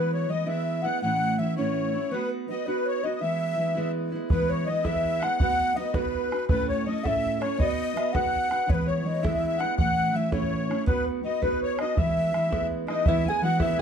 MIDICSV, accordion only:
0, 0, Header, 1, 2, 480
1, 0, Start_track
1, 0, Key_signature, 4, "major"
1, 0, Tempo, 364964
1, 1338, Time_signature, 6, 3, 24, 8
1, 18171, End_track
2, 0, Start_track
2, 0, Title_t, "Accordion"
2, 0, Program_c, 0, 21
2, 0, Note_on_c, 0, 71, 78
2, 151, Note_off_c, 0, 71, 0
2, 165, Note_on_c, 0, 73, 65
2, 385, Note_on_c, 0, 75, 70
2, 397, Note_off_c, 0, 73, 0
2, 623, Note_off_c, 0, 75, 0
2, 628, Note_on_c, 0, 76, 73
2, 1096, Note_on_c, 0, 78, 84
2, 1126, Note_off_c, 0, 76, 0
2, 1315, Note_off_c, 0, 78, 0
2, 1335, Note_on_c, 0, 78, 84
2, 1791, Note_off_c, 0, 78, 0
2, 1816, Note_on_c, 0, 76, 73
2, 2037, Note_off_c, 0, 76, 0
2, 2060, Note_on_c, 0, 73, 66
2, 2775, Note_on_c, 0, 71, 66
2, 2803, Note_off_c, 0, 73, 0
2, 3017, Note_off_c, 0, 71, 0
2, 3282, Note_on_c, 0, 75, 65
2, 3516, Note_off_c, 0, 75, 0
2, 3519, Note_on_c, 0, 71, 66
2, 3776, Note_off_c, 0, 71, 0
2, 3780, Note_on_c, 0, 73, 75
2, 3997, Note_on_c, 0, 75, 79
2, 4009, Note_off_c, 0, 73, 0
2, 4119, Note_off_c, 0, 75, 0
2, 4139, Note_on_c, 0, 75, 55
2, 4222, Note_on_c, 0, 76, 72
2, 4226, Note_off_c, 0, 75, 0
2, 5149, Note_off_c, 0, 76, 0
2, 5656, Note_on_c, 0, 71, 76
2, 5904, Note_on_c, 0, 73, 74
2, 5926, Note_off_c, 0, 71, 0
2, 6125, Note_on_c, 0, 75, 74
2, 6153, Note_off_c, 0, 73, 0
2, 6353, Note_on_c, 0, 76, 74
2, 6380, Note_off_c, 0, 75, 0
2, 6835, Note_on_c, 0, 78, 89
2, 6874, Note_off_c, 0, 76, 0
2, 7044, Note_off_c, 0, 78, 0
2, 7064, Note_on_c, 0, 78, 100
2, 7539, Note_off_c, 0, 78, 0
2, 7571, Note_on_c, 0, 75, 72
2, 7794, Note_on_c, 0, 71, 68
2, 7824, Note_off_c, 0, 75, 0
2, 8480, Note_off_c, 0, 71, 0
2, 8524, Note_on_c, 0, 71, 88
2, 8774, Note_off_c, 0, 71, 0
2, 8793, Note_on_c, 0, 73, 71
2, 9026, Note_on_c, 0, 75, 78
2, 9039, Note_off_c, 0, 73, 0
2, 9249, Note_on_c, 0, 76, 82
2, 9271, Note_off_c, 0, 75, 0
2, 9746, Note_on_c, 0, 73, 79
2, 9763, Note_off_c, 0, 76, 0
2, 9991, Note_off_c, 0, 73, 0
2, 9991, Note_on_c, 0, 75, 91
2, 10710, Note_on_c, 0, 78, 85
2, 10732, Note_off_c, 0, 75, 0
2, 11411, Note_on_c, 0, 71, 73
2, 11452, Note_off_c, 0, 78, 0
2, 11657, Note_on_c, 0, 73, 66
2, 11658, Note_off_c, 0, 71, 0
2, 12116, Note_on_c, 0, 76, 63
2, 12149, Note_off_c, 0, 73, 0
2, 12268, Note_off_c, 0, 76, 0
2, 12288, Note_on_c, 0, 76, 67
2, 12439, Note_off_c, 0, 76, 0
2, 12459, Note_on_c, 0, 76, 88
2, 12597, Note_on_c, 0, 78, 86
2, 12631, Note_off_c, 0, 76, 0
2, 12821, Note_off_c, 0, 78, 0
2, 12840, Note_on_c, 0, 78, 96
2, 13325, Note_on_c, 0, 76, 74
2, 13358, Note_off_c, 0, 78, 0
2, 13556, Note_off_c, 0, 76, 0
2, 13576, Note_on_c, 0, 73, 76
2, 14251, Note_off_c, 0, 73, 0
2, 14287, Note_on_c, 0, 71, 79
2, 14535, Note_off_c, 0, 71, 0
2, 14795, Note_on_c, 0, 75, 60
2, 15010, Note_off_c, 0, 75, 0
2, 15018, Note_on_c, 0, 71, 67
2, 15261, Note_off_c, 0, 71, 0
2, 15292, Note_on_c, 0, 73, 83
2, 15503, Note_off_c, 0, 73, 0
2, 15523, Note_on_c, 0, 75, 87
2, 15745, Note_on_c, 0, 76, 71
2, 15757, Note_off_c, 0, 75, 0
2, 16666, Note_off_c, 0, 76, 0
2, 16937, Note_on_c, 0, 75, 68
2, 17165, Note_on_c, 0, 76, 79
2, 17181, Note_off_c, 0, 75, 0
2, 17425, Note_on_c, 0, 80, 79
2, 17437, Note_off_c, 0, 76, 0
2, 17655, Note_on_c, 0, 78, 78
2, 17669, Note_off_c, 0, 80, 0
2, 17874, Note_on_c, 0, 76, 76
2, 17899, Note_off_c, 0, 78, 0
2, 18122, Note_off_c, 0, 76, 0
2, 18122, Note_on_c, 0, 80, 96
2, 18171, Note_off_c, 0, 80, 0
2, 18171, End_track
0, 0, End_of_file